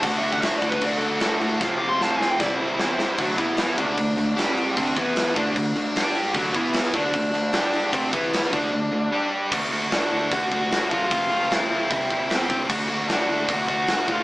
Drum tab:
CC |x-x-x-x-x-x-x-x-|----------------|x-x-x-x-x-x-x-x-|x-x-x-x-x-x-x-x-|
HH |----------------|----------------|----------------|----------------|
SD |----o-------o---|o---o-o-o---o-o-|----o-------o---|----o-------o---|
BD |o--o--ooo-------|o-------o-------|o-o---o-o-------|o-o---o-o-------|

CC |x-x-x-x-x-x-x-x-|x-x-x-x---------|x---------------|----------------|
HH |----------------|----------------|----o---o---o---|o---o---o---o---|
SD |----o-------o---|----o-----------|----o-------o---|----o-------o---|
BD |o-o---o-o-------|o-o---o---------|o-------o-o---o-|o-------o-o---o-|

CC |x---------------|
HH |----o---o---o---|
SD |----o-------o---|
BD |o-------o-o---o-|